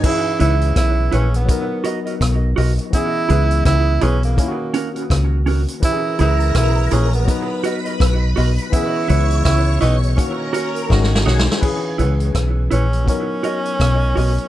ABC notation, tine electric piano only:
X:1
M:4/4
L:1/8
Q:"Swing 16ths" 1/4=83
K:C#dor
V:1 name="Tine electric piano"
[E,CGB]4 [F,B,DA]4 | [E,B,CG]4 [D,A,CEF]4 | [E,C=G^GB]4 [F,B,DB]4 | [E,B,CG]4 [D,A,CF]2 [D,G,CF]2 |
[E,CGB]4 [F,B,DA]4 |]